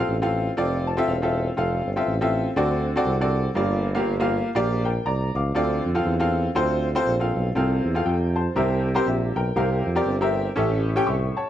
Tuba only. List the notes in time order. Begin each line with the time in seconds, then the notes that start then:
0.07 A1
0.57 F1
1.06 E1
1.56 F1
1.85 G1
2.06 A1
2.56 D2
3.05 C2
3.55 G1
4.05 G1
4.55 A#1
5.05 C2
5.34 C#2
5.55 D2
5.85 F2
6.06 E2
6.55 D2
7.05 A#1
7.35 B1
7.55 C2
7.84 E2
8.05 F2
8.56 C2
9.06 A#1
9.35 B1
9.56 C2
9.86 F2
10.06 G1
10.56 A1
11.06 C2